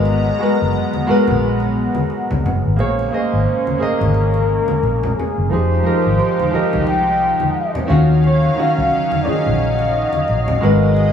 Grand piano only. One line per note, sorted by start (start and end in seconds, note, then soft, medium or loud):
0.00 0.32 G#3 medium
0.00 0.33 F#4 medium
0.00 0.33 A#4 medium
0.00 0.34 B4 medium
0.39 1.01 G#3 medium
0.39 1.01 F#4 medium
0.39 1.02 A#4 medium
0.39 1.02 B4 medium
1.07 2.30 G#3 medium
1.07 2.30 F#4 medium
1.07 2.31 A#4 medium
1.07 2.32 B4 medium
2.76 3.08 A#3 medium
2.76 3.09 G#4 medium
2.76 3.09 C5 medium
2.76 3.10 C#5 medium
3.11 3.73 A#3 medium
3.11 3.73 G#4 medium
3.11 3.74 C5 medium
3.11 3.75 D#5 medium
3.78 5.02 A#3 medium
3.78 5.03 G#4 medium
3.78 5.03 C5 medium
3.82 5.04 D#5 medium
5.49 5.81 F3 medium
5.49 5.81 D#4 medium
5.49 5.82 G4 medium
5.49 5.83 G#4 medium
5.83 6.45 F3 medium
5.83 6.46 D#4 medium
5.83 6.46 G4 medium
5.83 6.47 A#4 medium
6.51 7.75 F3 medium
6.51 7.75 D#4 medium
6.51 7.76 G4 medium
6.55 7.77 A#4 medium
7.87 8.49 D#3 medium
7.87 8.50 C#4 medium
7.87 8.51 F4 medium
7.91 8.51 F#4 medium
8.56 9.18 D#3 medium
8.56 9.19 C#4 medium
8.56 9.19 F4 medium
8.56 9.20 F#4 medium
9.25 10.48 D#3 medium
9.25 10.48 C#4 medium
9.25 10.49 F4 medium
9.25 10.50 G#4 medium
10.61 11.13 G#3 medium
10.61 11.13 F#4 medium
10.61 11.13 A#4 medium
10.61 11.13 B4 medium